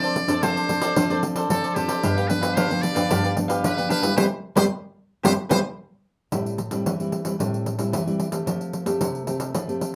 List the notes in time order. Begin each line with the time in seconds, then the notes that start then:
Already playing: F3 C4 D4 A4 D5
0.03 A4 C5 D5, pandeiro
0.15 muted cavaquinho stroke, pandeiro
0.28 C4 D4 A4 C5 D5, pandeiro
0.42 F3 F4 A4 C5 D5, pandeiro
0.56 A4 C5 D5, pandeiro
0.69 C4 D4 A4, pandeiro
0.82 A4 C5 D5, pandeiro
0.96 F3 C4 D4 F4 A4 C5 D5, pandeiro
1.10 C4 D4 A4 C5 D5, pandeiro
1.23 muted cavaquinho stroke, pandeiro
1.36 A4 C5 D5, pandeiro
1.49 F3 C4 D4 A4, pandeiro
1.64 A4 C5 D5, pandeiro
1.69 A4
1.75 C4 D4 F4 G4 A4 C5 D5, pandeiro
1.88 A4 C5 D5, pandeiro
2.03 G2 F3 B3 D4 G4 B4 F5, pandeiro
2.17 G4 B4 F5, pandeiro
2.28 F3 B3 D4 B4, muted cavaquinho stroke, pandeiro
2.41 G4 B4 F5, pandeiro
2.55 D3 D4 G4 B4 C5 F5, pandeiro
2.70 F3 B3 D4 G4 B4 F5, pandeiro
2.82 D5, pandeiro
2.95 F3 B3 D4 G4 B4 F5, pandeiro
3.10 G2 D4 G4 B4 F5, pandeiro
3.24 G4 B4 F5, pandeiro
3.36 F3 B3 D4, muted cavaquinho stroke, pandeiro
3.48 G4 B4 F5, pandeiro
3.63 D3 B4, pandeiro
3.77 F3 B3 D4 G4 B4 F5, pandeiro
3.89 D4 G4 B4 F5, pandeiro
4.02 G3 B3 E4 G4 B4 F5, pandeiro
4.16 G3 B3 C4 G4 B4 C5, pandeiro
4.55 G3 B3 C4 G4 B4 C5, pandeiro
5.23 G3 B3 C4 G4 B4 C5, pandeiro
5.49 G3 B3 C4 G4 B4 C5, pandeiro
6.32 A2 G3 C4 E4, pandeiro
6.46 pandeiro
6.58 pandeiro
6.71 G3 C4 E4, pandeiro
6.86 E3, pandeiro
7.00 G3 C4 E4, pandeiro
7.12 pandeiro
7.25 G3 C4 E4, pandeiro
7.39 A2 G3 C4 E4, pandeiro
7.54 pandeiro
7.66 pandeiro
7.78 G3 C4 E4, pandeiro
7.92 E3, pandeiro
8.06 G3 C4 E4, pandeiro
8.20 pandeiro
8.31 A3 C4 G4, pandeiro
8.46 F3, pandeiro
8.61 pandeiro
8.73 pandeiro
8.85 A3 C4 G4, pandeiro
9.01 C3, pandeiro
9.15 pandeiro
9.27 A3 C4 G4, pandeiro
9.40 pandeiro
9.54 F3, pandeiro
9.67 A3 C4 G4, pandeiro
9.81 pandeiro